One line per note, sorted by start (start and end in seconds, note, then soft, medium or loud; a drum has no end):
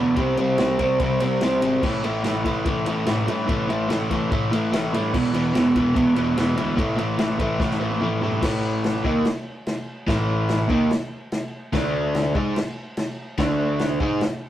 0.00 0.15 D2 medium
0.00 0.16 E2 medium
0.00 0.16 B2 loud
0.00 0.17 E3 loud
0.16 0.36 C2 medium
0.16 0.36 C3 loud
0.16 0.37 G3 loud
0.16 0.38 C4 loud
0.16 kick loud
0.16 ride loud
0.37 0.57 C2 medium
0.37 0.57 C3 medium
0.37 0.58 G3 loud
0.37 0.60 C4 loud
0.37 ride medium
0.58 0.77 C2 medium
0.58 0.77 C3 medium
0.58 0.78 G3 medium
0.58 0.80 C4 medium
0.58 snare loud
0.58 ride medium
0.79 0.98 C2 medium
0.79 0.99 C3 medium
0.79 1.00 G3 medium
0.79 1.01 C4 medium
0.79 kick medium
0.79 ride medium
1.00 1.18 C2 loud
1.00 1.19 C3 medium
1.00 1.21 G3 loud
1.00 1.23 C4 loud
1.00 kick loud
1.00 ride loud
1.20 1.40 C2 medium
1.20 1.40 C3 medium
1.20 1.42 G3 loud
1.20 1.43 C4 medium
1.20 ride medium
1.41 1.60 C2 medium
1.41 1.60 C3 medium
1.41 1.61 G3 medium
1.41 1.63 C4 medium
1.41 snare loud
1.41 ride loud
1.62 1.81 G#1 medium
1.62 1.81 C3 medium
1.62 1.82 G3 loud
1.62 1.84 C4 loud
1.62 ride medium
1.82 2.02 A1 loud
1.82 2.03 A2 medium
1.82 2.04 E3 loud
1.82 2.04 A3 loud
1.82 kick loud
1.82 crash loud
2.03 2.22 A1 loud
2.03 2.23 A2 medium
2.03 2.24 E3 medium
2.03 2.25 A3 medium
2.03 ride medium
2.23 2.43 A1 medium
2.23 2.44 A2 medium
2.23 2.45 E3 medium
2.23 2.46 A3 medium
2.23 snare loud
2.23 ride loud
2.44 2.63 A1 medium
2.44 2.64 A2 medium
2.44 2.66 E3 medium
2.44 2.66 A3 medium
2.44 kick medium
2.44 ride medium
2.65 2.84 A1 medium
2.65 2.85 A2 medium
2.65 2.87 E3 loud
2.65 2.87 A3 loud
2.65 kick loud
2.65 ride loud
2.86 3.05 A1 medium
2.86 3.05 A2 loud
2.86 3.07 E3 medium
2.86 3.07 A3 medium
2.86 ride medium
3.06 3.26 A1 medium
3.06 3.26 A2 medium
3.06 3.28 E3 medium
3.06 3.28 A3 medium
3.06 snare loud
3.06 ride loud
3.27 3.46 G2 medium
3.27 3.46 A2 medium
3.27 3.48 E3 medium
3.27 3.48 A3 loud
3.27 ride medium
3.47 3.67 A1 medium
3.47 3.67 A2 loud
3.47 3.69 E3 loud
3.47 3.69 A3 loud
3.47 kick loud
3.47 ride medium
3.68 3.88 A1 loud
3.68 3.88 A2 medium
3.68 3.90 E3 medium
3.68 3.90 A3 loud
3.68 ride medium
3.89 4.08 A1 loud
3.89 4.09 A2 medium
3.89 4.11 E3 medium
3.89 4.11 A3 loud
3.89 snare loud
3.89 ride loud
4.10 4.29 A1 medium
4.10 4.30 A2 medium
4.10 4.31 E3 medium
4.10 4.31 A3 loud
4.10 kick medium
4.10 ride medium
4.31 4.50 A1 medium
4.31 4.50 A2 medium
4.31 4.51 E3 loud
4.31 4.52 A3 loud
4.31 kick loud
4.31 ride medium
4.51 4.70 A1 loud
4.51 4.70 A2 medium
4.51 4.72 E3 medium
4.51 4.73 A3 medium
4.51 ride medium
4.72 4.91 A1 medium
4.72 4.92 A2 medium
4.72 4.94 E3 medium
4.72 4.94 A3 medium
4.72 snare loud
4.72 ride loud
4.93 5.11 G2 medium
4.93 5.12 A2 medium
4.93 5.15 E3 medium
4.93 5.13 A3 loud
4.93 ride medium
5.13 5.32 E1 medium
5.13 5.32 E2 loud
5.13 5.33 B2 loud
5.13 5.35 E3 loud
5.13 kick loud
5.13 crash loud
5.34 5.53 E1 loud
5.34 5.52 E2 loud
5.34 5.54 B2 loud
5.34 5.55 E3 loud
5.34 ride medium
5.54 5.73 E1 loud
5.54 5.73 E2 medium
5.54 5.74 B2 medium
5.54 5.76 E3 medium
5.54 snare loud
5.54 ride loud
5.75 5.94 E1 medium
5.75 5.93 E2 medium
5.75 5.94 B2 medium
5.75 5.96 E3 loud
5.75 kick medium
5.75 ride medium
5.94 6.14 E1 loud
5.94 6.14 E2 loud
5.94 6.15 B2 loud
5.94 6.17 E3 loud
5.94 kick loud
5.94 ride loud
6.16 6.35 E1 loud
6.16 6.35 E2 medium
6.16 6.36 B2 medium
6.16 6.37 E3 medium
6.16 ride medium
6.36 6.55 E1 medium
6.36 6.55 E2 medium
6.36 6.56 B2 medium
6.36 6.57 E3 medium
6.36 snare loud
6.36 ride loud
6.56 6.77 D2 medium
6.56 6.76 E2 loud
6.56 6.75 B2 medium
6.56 6.76 E3 loud
6.56 ride medium
6.76 6.97 A1 medium
6.76 6.95 A2 loud
6.76 6.96 E3 medium
6.76 6.97 A3 loud
6.76 kick loud
6.76 ride medium
6.96 7.17 A1 medium
6.96 7.16 A2 medium
6.96 7.17 E3 loud
6.96 7.18 A3 loud
6.96 ride medium
7.17 7.38 A1 loud
7.17 7.37 A2 medium
7.17 7.38 E3 medium
7.17 7.39 A3 loud
7.17 snare loud
7.17 ride loud
7.38 7.58 A1 medium
7.38 7.59 A2 medium
7.38 7.60 E3 medium
7.38 7.60 A3 medium
7.38 kick medium
7.38 ride medium
7.60 7.79 A1 medium
7.60 7.79 A2 loud
7.60 7.80 E3 loud
7.60 7.81 A3 loud
7.60 kick loud
7.60 snare medium
7.71 snare medium
7.80 7.99 A1 loud
7.80 7.99 A2 medium
7.80 8.00 E3 medium
7.80 8.02 A3 medium
7.91 high tom medium
8.00 8.20 A1 medium
8.00 8.21 A2 medium
8.00 8.22 E3 medium
8.00 8.23 A3 medium
8.00 mid tom loud
8.21 8.41 G2 medium
8.21 8.41 A2 medium
8.21 8.42 E3 medium
8.21 8.42 A3 medium
8.21 floor tom loud
8.32 floor tom loud
8.42 9.01 A1 medium
8.42 9.03 A2 medium
8.42 9.04 E3 loud
8.42 9.05 A3 loud
8.42 kick loud
8.42 snare loud
8.42 crash loud
8.42 crash medium
8.84 snare loud
8.84 crash medium
9.04 9.24 D#2 medium
9.04 9.24 D#3 medium
9.04 9.25 A#3 medium
9.04 9.25 D#4 loud
9.04 kick loud
9.25 snare loud
9.25 crash medium
9.66 snare loud
9.66 crash medium
10.07 10.66 A1 medium
10.07 10.69 A2 medium
10.07 10.69 E3 loud
10.07 10.70 A3 loud
10.07 kick loud
10.07 snare loud
10.07 crash medium
10.49 snare loud
10.49 crash medium
10.69 10.89 D#2 loud
10.69 10.89 D#3 medium
10.69 10.90 A#3 medium
10.69 10.91 D#4 medium
10.69 kick loud
10.91 snare loud
10.91 crash medium
11.32 snare loud
11.32 crash medium
11.73 12.31 D2 medium
11.73 12.34 D3 medium
11.73 12.35 A3 loud
11.73 12.35 D4 loud
11.73 kick loud
11.73 snare loud
11.73 crash medium
12.15 snare loud
12.15 crash medium
12.35 12.54 G#2 medium
12.35 12.55 G#3 medium
12.35 12.56 D#4 medium
12.35 12.56 G#4 medium
12.35 kick loud
12.56 snare loud
12.56 crash medium
12.97 snare loud
12.97 crash medium
13.38 13.97 D2 medium
13.38 14.00 D3 loud
13.38 14.00 A3 loud
13.38 14.01 D4 loud
13.38 kick loud
13.38 snare loud
13.38 crash medium
13.79 snare loud
13.79 crash medium
14.00 14.20 G#2 medium
14.00 14.21 G#3 medium
14.00 14.21 D#4 medium
14.00 14.21 G#4 loud
14.00 kick loud
14.21 snare loud
14.21 crash medium